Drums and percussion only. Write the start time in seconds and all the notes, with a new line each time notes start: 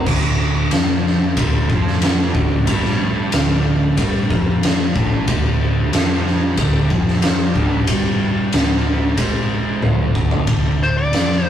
0.06 kick, crash
0.71 snare, ride bell
1.07 snare
1.37 kick, ride bell
1.70 kick
1.87 snare
2.02 snare, ride bell
2.35 kick
2.67 kick, ride bell
2.85 snare
3.32 snare, ride bell
3.97 kick, ride bell
4.31 kick
4.63 snare, ride bell
4.96 kick
5.28 kick, ride bell
5.93 snare, ride bell
6.27 snare
6.57 kick, ride bell
6.90 kick
7.08 snare
7.22 snare, ride bell
7.56 kick
7.87 kick, ride bell
8.53 snare, ride bell
9.17 kick, ride bell
9.82 high tom
10.15 kick
10.31 floor tom
10.47 kick, ride bell
11.13 snare, ride bell
11.31 snare